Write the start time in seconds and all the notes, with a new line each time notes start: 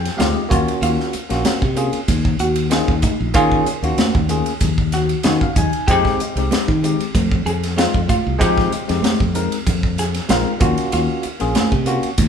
Already playing: G#4 G5
0.05 snare, ride
0.17 D2 G#3 C4 D#4 F4 G4 F5, snare, hi-hat pedal, ride, muted conga, high conga
0.34 D#5
0.49 D#2 A#3 C#4 F4 F#4 C#5, kick, hi-hat pedal, ride, low conga
0.68 ride
0.82 D#2 F4, hi-hat pedal, ride, muted conga
1.00 snare
1.13 muted fingered electric bass stroke, hi-hat pedal, ride, muted conga
1.29 A#1 A#3 C#4 F4 F#4, snare, ride
1.45 muted fingered electric bass stroke, snare, hi-hat pedal, ride, high conga
1.62 C3, kick
1.76 A#3 C#4 F4 G#4, hi-hat pedal, ride
1.93 muted fingered electric bass stroke, ride
2.08 D#2 F4 G#4, kick, hi-hat pedal, ride, muted conga, high conga
2.25 kick
2.39 D#2 F#4, hi-hat pedal, ride
2.56 ride
2.70 A#3 C#4 D#4 F4 G#4, snare, hi-hat pedal, ride, muted conga
2.88 D#2, kick
3.02 D#4 F4 F#4, kick, hi-hat pedal, ride, high conga
3.20 A#1
3.34 D#3 A#3 C#4 F4 G#4, kick, hi-hat pedal, ride, muted conga
3.52 kick
3.66 muted fingered electric bass stroke, hi-hat pedal, ride, muted conga
3.83 D#2 A#3 C#4 F4 F#4, ride
3.97 muted fingered electric bass stroke, snare, hi-hat pedal, ride, high conga
4.15 D#2, kick
4.29 A#3 C#4 F4 G#4, hi-hat pedal, ride
4.46 ride
4.61 D#2 F4 G#4, kick, hi-hat pedal, ride, muted conga, low conga
4.78 kick
4.92 F#4, snare, hi-hat pedal, ride
5.09 ride
5.23 D#3 A#3 C#4 D#4 F4 F#4 C#5, snare, hi-hat pedal, ride, muted conga, high conga
5.41 F5, kick
5.56 D#2 D#4 F4 G#4 G#5, kick, hi-hat pedal, ride, low conga
5.73 ride
5.88 F2 G#3 C4 D#4 G4, kick, hi-hat pedal, ride, muted conga
6.05 kick, snare
6.19 muted fingered electric bass stroke, hi-hat pedal, ride, muted conga
6.36 C2 G#3 C4 D#4 G4, ride
6.51 snare, hi-hat pedal, ride, high conga
6.68 D#3, kick
6.83 G#3 C4 D#4 G4, hi-hat pedal, ride
7.00 muted fingered electric bass stroke, ride
7.14 F2 D#4 G4, kick, hi-hat pedal, ride, muted conga, high conga
7.32 kick
7.46 F2 G#4, hi-hat pedal, ride
7.63 snare, ride
7.77 G#3 C4 D#4 F4, snare, hi-hat pedal, ride, muted conga
7.94 F2, kick
8.08 D#4 F4 G4, kick, hi-hat pedal, ride, high conga
8.27 C2
8.39 F3 G#3 C4 D#4 G4, kick, hi-hat pedal, ride, muted conga
8.58 kick, snare
8.72 muted fingered electric bass stroke, hi-hat pedal, ride, muted conga
8.88 F2 G#3 C4 D#4 G4, snare, ride
9.02 muted fingered electric bass stroke, snare, hi-hat pedal, ride, high conga
9.20 F2, kick
9.34 G#3 C4 D#4 A#4, hi-hat pedal, ride
9.52 ride
9.66 F2 D#4 G4, kick, hi-hat pedal, ride, muted conga, low conga
9.83 kick
9.98 G#4, snare, hi-hat pedal, ride
10.14 snare, ride
10.29 A#1 G#3 C4 D#4 F4 A#4, snare, hi-hat pedal, ride, muted conga, high conga
10.60 D#2 A#3 C#4 F4 F#4, kick, hi-hat pedal, ride, low conga
10.78 ride
10.92 D#2 F4, hi-hat pedal, ride, muted conga
11.23 muted fingered electric bass stroke, hi-hat pedal, ride
11.40 A#1 A#3 C#4 F4 G#4, ride
11.55 muted fingered electric bass stroke, snare, hi-hat pedal, ride, high conga
11.72 C3, kick
11.86 A#3 C#4 F4 F#4, hi-hat pedal, ride
12.03 muted fingered electric bass stroke, ride
12.17 D#2 F4 F#4, kick, hi-hat pedal, ride, muted conga, high conga